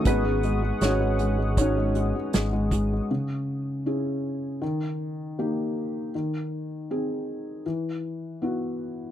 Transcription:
<<
  \new Staff \with { instrumentName = "Analog synth pad" } { \time 4/4 \key cis \minor \tempo 4 = 79 <gis' fis'' cis''' dis'''>1 | r1 | r1 | }
  \new Staff \with { instrumentName = "Vibraphone" } { \time 4/4 \key cis \minor <cis' fis' gis'>2.~ <cis' fis' gis'>8 r8 | r1 | r1 | }
  \new Staff \with { instrumentName = "Felt piano" } { \time 4/4 \key cis \minor <b dis' fis' b'>4 <cis' fis' cis''>4 <cis' fis' cis''>4. r8 | r1 | r1 | }
  \new Staff \with { instrumentName = "Felt piano" } { \clef bass \time 4/4 \key cis \minor gis16 gis16 gis16 gis16 gis16 gis16 gis16 gis16 dis'16 gis16 gis16 gis16 gis16 gis16 gis16 gis16 | cis4 <cis' e' gis'>4 dis4 <ais dis' g'>4 | dis4 <bis dis' gis'>4 e4 <b e' fis'>4 | }
  \new Staff \with { instrumentName = "Fingered electric bass" } { \clef bass \time 4/4 \key cis \minor gis,,4 gis,,2 gis,,4 | r1 | r1 | }
  \new DrumStaff \with { instrumentName = "Drums" } \drummode { \time 4/4 <hh bd>8 hh8 <hh sn>8 hh8 <hh bd>8 hh8 <hh sn>8 <hh bd>8 | r4 r4 r4 r4 | r4 r4 r4 r4 | }
>>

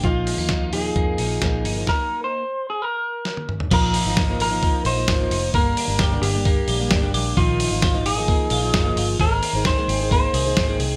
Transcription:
<<
  \new Staff \with { instrumentName = "Clean electric guitar" } { \time 4/4 \key bes \mixolydian \tempo 4 = 131 f'4. aes'2~ aes'8 | bes'8. c''4 aes'16 bes'4. r8 | bes'4. bes'4 c''4. | bes'4. g'2 r8 |
f'4. aes'2~ aes'8 | bes'4 c''4 c''4. r8 | }
  \new Staff \with { instrumentName = "Clean electric guitar" } { \time 4/4 \key bes \mixolydian f8 aes16 bes16 ees'8 f8 bes8 ees'8 bes8 ees'8 | r1 | f8 bes8 ees'8 bes8 f8 ees'8 bes8 ees'8 | bes8 d'8 g'8 d'8 bes8 g'8 d'8 g'8 |
ees8 ees'8 f'8 ees'8 bes8 f'8 ees'8 f'8 | ees8 c'8 aes'8 c'8 bes8 aes'8 c'8 aes'8 | }
  \new Staff \with { instrumentName = "Steel-string acoustic guitar" } { \time 4/4 \key bes \mixolydian <bes, f bes ees'>8. <f bes ees'>8. <bes, f bes ees'>4 <bes, f bes ees'>8 <bes, f bes ees'>8. <f bes ees'>16 | r1 | <bes, f bes ees'>8. <f bes ees'>8 <bes, f bes ees'>8 <f bes ees'>4 <f bes ees'>8 <f bes ees'>8. | <d g bes d'>8. <g bes d'>8 <g, d g bes d'>8 <g bes d'>4 <g bes d'>8 <g bes d'>8. |
<ees f bes ees'>8. <f bes ees'>8 <bes, ees f bes ees'>8 <f bes ees'>4 <f bes ees'>8 <f bes ees'>8. | <bes ees' aes' c''>8. <ees' aes' c''>8 <aes bes ees' aes' c''>8 <ees' aes' c''>4 <ees' aes' c''>8 <ees' aes' c''>8. | }
  \new Staff \with { instrumentName = "Fingered electric bass" } { \clef bass \time 4/4 \key bes \mixolydian bes,,8. ees,4~ ees,16 f,8 bes,,8 bes,,8 g,,8 | r1 | bes,,8. aes,,4. r16 bes,,8 aes,,8 f,,8 | g,,8 r16 g,,8. g,,4 bes,,8 g,,8 bes,,8 |
bes,,8. aes,,4. r16 bes,,8 g,,8 g,,8 | aes,,8 r16 aes,,8 r16 aes,,4 c,8 aes,,8 c,8 | }
  \new DrumStaff \with { instrumentName = "Drums" } \drummode { \time 4/4 <hh bd>8 hho8 <hh bd sn>8 hho8 <hh bd>8 hho8 <hh bd sn>8 hho8 | <bd sn>4 r4 r4 sn16 tommh16 toml16 tomfh16 | <cymc hho bd>8 hho8 <bd sn>8 hho8 <hho bd>8 hho8 <hho bd sn>8 hho8 | <hho bd>8 hho8 <hho bd sn>8 hho8 <hho bd>8 hho8 <hho bd sn>8 hho8 |
<hho bd>8 hho8 <hho bd sn>8 hho8 <hho bd>8 hho8 <hho bd sn>8 hho8 | <hho bd>8 hho8 <hho bd sn>8 hho8 <hho bd>8 hho8 <hho bd sn>8 hho8 | }
>>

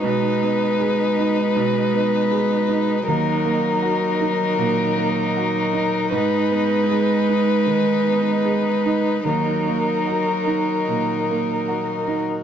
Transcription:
<<
  \new Staff \with { instrumentName = "Violin" } { \time 4/4 \key ees \minor \tempo 4 = 78 ces''1 | bes'1 | ces''1 | bes'2.~ bes'8. r16 | }
  \new Staff \with { instrumentName = "Harmonium" } { \time 4/4 \key ees \minor << { <aes' ces''>1 | <ges' bes'>1 | <aes' ces''>1 | <ges' bes'>1 | } \\ { dis'1 | ees'1~ | ees'1 | ees'1 | } >> }
  \new Staff \with { instrumentName = "Viola" } { \time 4/4 \key ees \minor dis'1 | ees'1~ | ees'1 | ees'2.~ ees'8. r16 | }
  \new Staff \with { instrumentName = "Upright piano" } { \time 4/4 \key ees \minor ces,8 ces'8 aes'8 ees'8 ces,8 ces'8 aes'8 ees'8 | ees,8 bes8 ges'8 ees'8 bes,8 bes8 ges'8 ees'8 | aes,8 ces'8 aes'8 ees'8 ees8 ces'8 aes'8 ees'8 | ees,8 bes8 ges'8 ees'8 bes,8 bes8 ges'8 ees'8 | }
  \new Staff \with { instrumentName = "Cello" } { \clef bass \time 4/4 \key ees \minor aes1 | ges1 | aes1 | ges2.~ ges8. r16 | }
>>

